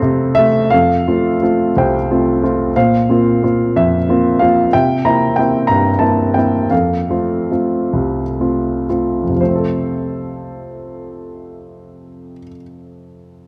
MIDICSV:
0, 0, Header, 1, 2, 480
1, 0, Start_track
1, 0, Key_signature, -1, "major"
1, 0, Tempo, 693642
1, 499, Time_signature, 6, 3, 24, 8
1, 974, Tempo, 670391
1, 2414, Tempo, 648649
1, 4334, Tempo, 709220
1, 4814, Tempo, 790514
1, 5294, Tempo, 888889
1, 5774, Tempo, 1025641
1, 8148, End_track
2, 0, Start_track
2, 0, Title_t, "Grand piano"
2, 0, Program_c, 0, 0
2, 0, Control_c, 0, 64, 127
2, 0, Note_on_c, 0, 41, 62
2, 0, Note_on_c, 0, 48, 51
2, 0, Note_on_c, 0, 57, 49
2, 0, Note_on_c, 0, 60, 54
2, 0, Note_on_c, 0, 69, 58
2, 0, Note_on_c, 0, 77, 83
2, 14, Note_off_c, 0, 48, 0
2, 14, Note_on_c, 0, 48, 50
2, 240, Note_on_c, 0, 76, 88
2, 255, Note_off_c, 0, 57, 0
2, 265, Note_on_c, 0, 57, 54
2, 470, Note_off_c, 0, 41, 0
2, 475, Note_off_c, 0, 60, 0
2, 485, Note_off_c, 0, 48, 0
2, 487, Note_off_c, 0, 77, 0
2, 487, Note_on_c, 0, 77, 70
2, 496, Note_off_c, 0, 57, 0
2, 497, Note_off_c, 0, 69, 0
2, 497, Note_on_c, 0, 69, 47
2, 498, Note_off_c, 0, 76, 0
2, 503, Note_on_c, 0, 41, 42
2, 509, Control_c, 0, 64, 0
2, 620, Control_c, 0, 64, 127
2, 746, Note_on_c, 0, 57, 32
2, 746, Note_on_c, 0, 60, 28
2, 746, Note_on_c, 0, 65, 36
2, 942, Note_off_c, 0, 77, 0
2, 972, Note_off_c, 0, 57, 0
2, 975, Note_off_c, 0, 65, 0
2, 978, Note_off_c, 0, 60, 0
2, 983, Note_on_c, 0, 57, 33
2, 986, Note_on_c, 0, 65, 36
2, 989, Note_on_c, 0, 60, 30
2, 1187, Note_off_c, 0, 69, 0
2, 1229, Note_on_c, 0, 36, 43
2, 1233, Note_on_c, 0, 72, 40
2, 1242, Note_on_c, 0, 79, 54
2, 1365, Note_off_c, 0, 57, 0
2, 1367, Note_off_c, 0, 65, 0
2, 1368, Note_off_c, 0, 60, 0
2, 1475, Note_on_c, 0, 57, 32
2, 1479, Note_on_c, 0, 65, 38
2, 1480, Note_on_c, 0, 60, 29
2, 1693, Note_off_c, 0, 57, 0
2, 1701, Note_off_c, 0, 60, 0
2, 1703, Note_off_c, 0, 65, 0
2, 1704, Note_on_c, 0, 57, 34
2, 1712, Note_on_c, 0, 60, 32
2, 1713, Note_on_c, 0, 65, 38
2, 1893, Note_off_c, 0, 57, 0
2, 1898, Note_off_c, 0, 60, 0
2, 1899, Note_off_c, 0, 65, 0
2, 1910, Note_off_c, 0, 41, 0
2, 1916, Note_off_c, 0, 72, 0
2, 1921, Note_off_c, 0, 36, 0
2, 1943, Note_on_c, 0, 46, 49
2, 1944, Note_on_c, 0, 72, 42
2, 1944, Note_on_c, 0, 77, 65
2, 1946, Control_c, 0, 64, 0
2, 1970, Note_off_c, 0, 79, 0
2, 2053, Control_c, 0, 64, 127
2, 2180, Note_on_c, 0, 58, 36
2, 2183, Note_on_c, 0, 60, 31
2, 2190, Note_on_c, 0, 65, 37
2, 2411, Note_off_c, 0, 58, 0
2, 2417, Note_off_c, 0, 60, 0
2, 2417, Note_off_c, 0, 65, 0
2, 2422, Note_on_c, 0, 58, 31
2, 2428, Note_on_c, 0, 60, 30
2, 2428, Note_on_c, 0, 65, 34
2, 2635, Note_off_c, 0, 72, 0
2, 2635, Note_off_c, 0, 77, 0
2, 2667, Note_on_c, 0, 41, 49
2, 2670, Note_on_c, 0, 76, 64
2, 2811, Note_off_c, 0, 58, 0
2, 2814, Note_off_c, 0, 65, 0
2, 2815, Note_off_c, 0, 60, 0
2, 2909, Note_on_c, 0, 58, 35
2, 2914, Note_on_c, 0, 60, 32
2, 2918, Note_on_c, 0, 65, 39
2, 3135, Note_on_c, 0, 77, 61
2, 3141, Note_off_c, 0, 58, 0
2, 3141, Note_off_c, 0, 60, 0
2, 3144, Note_off_c, 0, 65, 0
2, 3152, Note_on_c, 0, 58, 36
2, 3152, Note_on_c, 0, 60, 36
2, 3155, Note_on_c, 0, 65, 42
2, 3164, Note_off_c, 0, 76, 0
2, 3340, Note_off_c, 0, 58, 0
2, 3340, Note_off_c, 0, 60, 0
2, 3341, Note_off_c, 0, 65, 0
2, 3357, Note_off_c, 0, 46, 0
2, 3365, Note_off_c, 0, 41, 0
2, 3385, Note_off_c, 0, 77, 0
2, 3386, Note_on_c, 0, 79, 70
2, 3388, Note_on_c, 0, 76, 50
2, 3392, Note_on_c, 0, 48, 47
2, 3393, Control_c, 0, 64, 0
2, 3544, Control_c, 0, 64, 127
2, 3604, Note_off_c, 0, 79, 0
2, 3621, Note_on_c, 0, 58, 34
2, 3621, Note_on_c, 0, 82, 64
2, 3622, Note_on_c, 0, 60, 30
2, 3629, Note_on_c, 0, 64, 37
2, 3851, Note_on_c, 0, 79, 63
2, 3858, Note_off_c, 0, 58, 0
2, 3859, Note_off_c, 0, 60, 0
2, 3862, Note_off_c, 0, 64, 0
2, 3864, Note_off_c, 0, 82, 0
2, 3869, Note_on_c, 0, 58, 30
2, 3870, Note_on_c, 0, 60, 29
2, 3873, Note_on_c, 0, 64, 34
2, 4065, Note_off_c, 0, 76, 0
2, 4082, Note_on_c, 0, 82, 66
2, 4097, Note_off_c, 0, 79, 0
2, 4101, Note_on_c, 0, 43, 43
2, 4247, Note_off_c, 0, 58, 0
2, 4247, Note_off_c, 0, 60, 0
2, 4249, Note_off_c, 0, 64, 0
2, 4315, Note_on_c, 0, 81, 53
2, 4316, Note_on_c, 0, 58, 30
2, 4324, Note_on_c, 0, 60, 28
2, 4326, Note_on_c, 0, 64, 34
2, 4337, Note_off_c, 0, 82, 0
2, 4554, Note_off_c, 0, 58, 0
2, 4557, Note_on_c, 0, 79, 52
2, 4563, Note_off_c, 0, 60, 0
2, 4564, Note_on_c, 0, 58, 31
2, 4566, Note_off_c, 0, 81, 0
2, 4568, Note_off_c, 0, 64, 0
2, 4573, Note_on_c, 0, 60, 27
2, 4578, Note_on_c, 0, 64, 33
2, 4763, Note_off_c, 0, 58, 0
2, 4768, Note_off_c, 0, 60, 0
2, 4771, Note_off_c, 0, 64, 0
2, 4791, Note_off_c, 0, 48, 0
2, 4791, Note_off_c, 0, 79, 0
2, 4797, Note_off_c, 0, 43, 0
2, 4803, Note_on_c, 0, 77, 49
2, 4808, Note_on_c, 0, 41, 39
2, 4812, Note_on_c, 0, 69, 33
2, 4822, Control_c, 0, 64, 0
2, 4930, Control_c, 0, 64, 127
2, 5039, Note_on_c, 0, 57, 26
2, 5046, Note_on_c, 0, 60, 25
2, 5047, Note_on_c, 0, 65, 28
2, 5283, Note_off_c, 0, 57, 0
2, 5286, Note_off_c, 0, 60, 0
2, 5286, Note_off_c, 0, 65, 0
2, 5292, Note_on_c, 0, 57, 24
2, 5295, Note_on_c, 0, 60, 23
2, 5295, Note_on_c, 0, 65, 27
2, 5520, Note_on_c, 0, 36, 35
2, 5677, Note_off_c, 0, 57, 0
2, 5679, Note_off_c, 0, 60, 0
2, 5679, Note_off_c, 0, 65, 0
2, 5771, Note_on_c, 0, 57, 23
2, 5776, Note_on_c, 0, 60, 22
2, 5777, Note_on_c, 0, 65, 26
2, 5979, Note_off_c, 0, 77, 0
2, 5982, Note_off_c, 0, 69, 0
2, 5996, Note_off_c, 0, 57, 0
2, 5998, Note_off_c, 0, 65, 0
2, 6000, Note_off_c, 0, 60, 0
2, 6003, Note_on_c, 0, 57, 22
2, 6005, Note_on_c, 0, 65, 28
2, 6007, Note_on_c, 0, 60, 23
2, 6155, Note_off_c, 0, 41, 0
2, 6162, Note_on_c, 0, 41, 28
2, 6191, Note_on_c, 0, 48, 26
2, 6196, Note_off_c, 0, 57, 0
2, 6197, Note_off_c, 0, 65, 0
2, 6199, Note_off_c, 0, 60, 0
2, 6222, Note_off_c, 0, 36, 0
2, 6222, Note_on_c, 0, 53, 26
2, 6244, Note_on_c, 0, 72, 40
2, 6249, Control_c, 0, 64, 0
2, 6252, Note_on_c, 0, 57, 25
2, 6279, Note_on_c, 0, 60, 26
2, 6313, Note_on_c, 0, 69, 33
2, 6345, Control_c, 0, 64, 127
2, 7601, Note_off_c, 0, 41, 0
2, 7630, Note_off_c, 0, 48, 0
2, 7661, Note_off_c, 0, 53, 0
2, 7683, Note_off_c, 0, 72, 0
2, 7692, Note_off_c, 0, 57, 0
2, 7718, Note_off_c, 0, 60, 0
2, 7753, Note_off_c, 0, 69, 0
2, 8148, End_track
0, 0, End_of_file